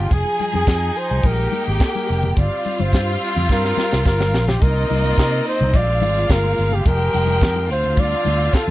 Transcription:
Already playing: F4
0.11 F1 F3 D#4 G#4 G#5, kick, closed hi-hat, tambourine, muted conga
0.25 tambourine, muted conga
0.38 open hi-hat, tambourine, high conga
0.53 F2 G#4, closed hi-hat, tambourine, high conga
0.67 F2, kick, snare, closed hi-hat, tambourine
0.96 C5, open hi-hat, tambourine
1.09 C2, closed hi-hat, low conga
1.23 A#1 G#3 A#3 G4 A#4 G5, kick, closed hi-hat, tambourine, muted conga, high conga
1.38 muted conga
1.52 open hi-hat, tambourine, high conga
1.65 G#1, closed hi-hat
1.80 A#4, kick, snare, closed hi-hat, tambourine, muted conga
1.95 high conga
2.08 F1, open hi-hat, tambourine
2.23 closed hi-hat, tambourine, low conga
2.36 G1 G3 C4 F4 D5 F5, kick, closed hi-hat, tambourine, muted conga, low conga
2.64 open hi-hat, tambourine, high conga
2.79 G1 C5, closed hi-hat, tambourine, high conga
2.93 G2, kick, snare, closed hi-hat, tambourine, muted conga
3.22 open hi-hat, tambourine
3.36 F2, closed hi-hat, low conga
3.49 G2 A#4, kick, snare, tambourine, high conga
3.64 snare, muted conga
3.77 snare, tambourine, high conga
3.92 C2, snare, tambourine
4.06 G1 A#4, kick, snare, tambourine
4.20 snare, muted conga, high conga
4.34 A#1, snare, tambourine
4.48 G4, snare, tambourine, low conga
4.61 C2 C3 A#3 C4 D#4 F4 A#4 D#5, kick, closed hi-hat, tambourine
4.76 tambourine
4.89 C2, open hi-hat, tambourine, high conga
5.04 closed hi-hat, tambourine, high conga
5.18 C3, kick, snare, closed hi-hat, tambourine
5.47 C5, open hi-hat, tambourine
5.60 C2, closed hi-hat, low conga
5.73 A#1 G#3 A#3 F4 D5 F5, kick, closed hi-hat, tambourine, muted conga, high conga
5.88 muted conga
6.02 G#1, open hi-hat, tambourine, high conga
6.15 closed hi-hat, tambourine
6.30 G1 A#4, kick, snare, closed hi-hat, tambourine, muted conga
6.45 muted conga
6.58 G1, open hi-hat, tambourine
6.71 G4, closed hi-hat, tambourine, low conga
6.85 F1 F3 G#3 D#4 G4 A#4 G5, kick, closed hi-hat, tambourine
6.99 tambourine, muted conga
7.13 F1, open hi-hat, tambourine, high conga
7.27 closed hi-hat, tambourine, high conga
7.41 F2, kick, snare, closed hi-hat, tambourine, muted conga
7.55 muted conga
7.69 D2 D3 C4 F4 C5 F5, open hi-hat, tambourine
7.84 closed hi-hat, low conga
7.97 D5, kick, closed hi-hat, tambourine, muted conga, high conga
8.25 D2, open hi-hat, tambourine, high conga
8.39 closed hi-hat, tambourine
8.53 A4, kick, snare, closed hi-hat, tambourine, muted conga

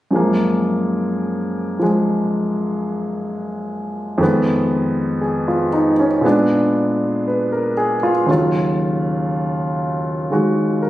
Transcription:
0.11 F#2 F3 G#3
0.16 A#3
1.79 F3 G#3
4.18 F2 D#3 G#3
4.23 B3
5.21 G#4
5.48 F4
5.73 D#4
6.00 C#4
6.21 A#2 G#3 B3
6.26 D4
7.27 B4
7.52 A#4
7.77 G#4
8.03 F4
8.26 D#2 C#3 F#3
8.31 F4
10.30 D#3 G#3 F#4
10.82 A#4

